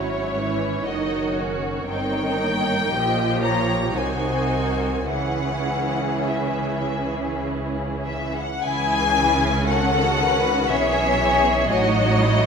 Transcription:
Already playing: double bass section G#1, cello section G#2, viola section F#3 C#4, violin section E4 C#5
0.35 viola section E3
0.85 double bass section F#1, cello section F#2, viola section D#3 D#4, violin section F#4 D#5
1.36 viola section C#4
1.86 double bass section G1, cello section G2, viola section D#3 C4, violin section D#4 G5
2.38 viola section A#3
2.90 double bass section A#1, cello section A#2, viola section F3, violin section G4 D#5
3.42 violin section C#5 A#5
3.94 double bass section C2, cello section C3, viola section D#3 D#4, violin section F#4 C5 G#5
4.50 viola section D#3
5.08 double bass section C#2, cello section C#3, viola section E3 C#4, violin section E4 G#4 F#5
6.28 violin section E5
8.06 violin section E5
8.36 violin section F#5
8.62 double bass section C#2, cello section C#3, viola section E3 C#4, violin section E4 G#4 G#5
9.16 violin section E4
9.68 viola section D#3, violin section F#4 A4 F#5
10.20 violin section B4
10.70 double bass section B1, cello section B2, viola section E3, violin section G#4 C#5 E5
11.20 violin section G#4
11.70 double bass section A1, cello section A2, viola section F#3 D#4, violin section F#4 C#5 D#5
12.20 violin section E4

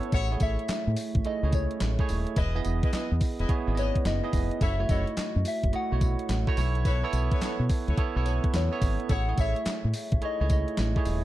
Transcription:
Already playing: tine electric piano B3 E4 A4 B4 C#5, soft synth lead C#5
0.03 closed hi-hat
0.12 fingered electric bass A1, horn section E4 G#4 A4 C#5, soft synth lead F#5, kick, closed hi-hat, tambourine
0.31 tine electric piano A3 E4 G#4 C#5
0.40 fingered electric bass A1, horn section E4 G#4 A4 C#5, soft synth lead E5, kick, closed hi-hat, tambourine
0.59 closed hi-hat
0.68 muted fingered electric bass stroke, snare, clap, closed hi-hat, tambourine
0.87 fingered electric bass A2
0.96 open hi-hat, tambourine
1.15 fingered electric bass A1, kick, closed hi-hat
1.25 tine electric piano A3 E4 G#4 D#5, soft synth lead D#5, muted fingered electric bass stroke, closed hi-hat
1.43 fingered electric bass C#2, tine electric piano A3 E4 G#4 C#5
1.53 soft synth lead C#5, kick, closed hi-hat, tambourine
1.71 closed hi-hat
1.80 fingered electric bass A1, snare, clap, closed hi-hat, tambourine
1.99 tine electric piano A3 E4 G#4 C#5, kick
2.09 fingered electric bass D#1, open hi-hat, tambourine
2.27 closed hi-hat
2.36 fingered electric bass E1, horn section E4 G#4 B4 D#5, kick, closed hi-hat, tambourine
2.55 tine electric piano B3 E4 G#4 D#5
2.65 fingered electric bass E1, closed hi-hat, tambourine
2.83 horn section E4 G#4 B4 D#5, kick, closed hi-hat
2.93 horn section E4 G#4 B4 D#5, muted fingered electric bass stroke, snare, clap, closed hi-hat, tambourine
3.11 fingered electric bass E2
3.21 kick, open hi-hat, tambourine
3.39 fingered electric bass E1, horn section E4 G#4 B4 D#5, closed hi-hat
3.49 tine electric piano B3 E4 G#4 C#5, kick, closed hi-hat
3.67 fingered electric bass G#1, tine electric piano B3 E4 G#4 D5
3.75 horn section E4 G#4 B4 D#5, tine electric piano D#5, closed hi-hat, tambourine
3.79 soft synth lead C#5
3.95 kick, closed hi-hat
4.05 fingered electric bass F#1, soft synth lead D#5, snare, clap, closed hi-hat, tambourine
4.23 tine electric piano B3 E4 G#4 D#5
4.33 fingered electric bass F1, kick, open hi-hat, tambourine
4.51 closed hi-hat
4.61 fingered electric bass F#1, horn section E4 F#4 A4 C#5, soft synth lead E5, kick, closed hi-hat, tambourine
4.79 tine electric piano A3 E4 F#4 C#5
4.89 fingered electric bass F#1, horn section E4 F#4 A4 C#5, soft synth lead D#5, kick, closed hi-hat, tambourine
5.07 closed hi-hat
5.17 muted fingered electric bass stroke, snare, clap, closed hi-hat, tambourine
5.36 fingered electric bass F#2
5.45 soft synth lead E5, open hi-hat, tambourine
5.64 fingered electric bass F#1, kick, closed hi-hat
5.73 tine electric piano A3 E4 F#4 D#5, soft synth lead F#5, muted fingered electric bass stroke, closed hi-hat
5.91 fingered electric bass B1, tine electric piano A3 E4 F#4 C#5
6.01 kick, closed hi-hat, tambourine
6.19 closed hi-hat
6.29 fingered electric bass A1, snare, clap, closed hi-hat, tambourine
6.47 tine electric piano A3 E4 F#4 C#5, kick
6.57 fingered electric bass B1, tine electric piano B3 E4 A4 C#5, open hi-hat, tambourine
6.75 closed hi-hat
6.85 horn section E4 A4 B4 C#5, kick, closed hi-hat, tambourine
7.04 tine electric piano B3 E4 A4 C#5
7.13 fingered electric bass B1, closed hi-hat, tambourine
7.32 horn section E4 A4 B4 C#5, kick, closed hi-hat
7.41 horn section E4 A4 B4 C#5, muted fingered electric bass stroke, snare, clap, closed hi-hat, tambourine
7.59 fingered electric bass B2
7.69 kick, open hi-hat, tambourine
7.87 fingered electric bass C#2, horn section E4 A4 B4 C#5, closed hi-hat
7.97 tine electric piano B3 E4 A4 C#5, kick, closed hi-hat
8.15 fingered electric bass B1, tine electric piano B3 E4 A4 C#5
8.25 horn section E4 A4 B4 C#5, closed hi-hat, tambourine
8.44 kick, closed hi-hat
8.53 fingered electric bass E2, soft synth lead C#5, snare, clap, closed hi-hat, tambourine
8.71 tine electric piano B3 E4 A4 C#5
8.82 fingered electric bass G#1, kick, open hi-hat, tambourine
9.00 closed hi-hat
9.09 fingered electric bass A1, horn section E4 G#4 A4 C#5, soft synth lead F#5, kick, closed hi-hat, tambourine
9.28 tine electric piano A3 E4 G#4 C#5
9.37 fingered electric bass A1, horn section E4 G#4 A4 C#5, soft synth lead E5, kick, closed hi-hat, tambourine
9.56 closed hi-hat
9.66 muted fingered electric bass stroke, snare, clap, closed hi-hat, tambourine
9.84 fingered electric bass A2
9.94 open hi-hat, tambourine
10.12 fingered electric bass A1, kick, closed hi-hat
10.21 tine electric piano A3 E4 G#4 C#5, soft synth lead D#5, muted fingered electric bass stroke, closed hi-hat
10.40 fingered electric bass C#2, tine electric piano A3 E4 G#4 C#5
10.50 soft synth lead D#5, kick, closed hi-hat, tambourine
10.68 closed hi-hat
10.77 fingered electric bass A1, snare, clap, closed hi-hat, tambourine
10.96 tine electric piano A3 E4 G#4 C#5, kick
11.05 fingered electric bass D#1, open hi-hat, tambourine

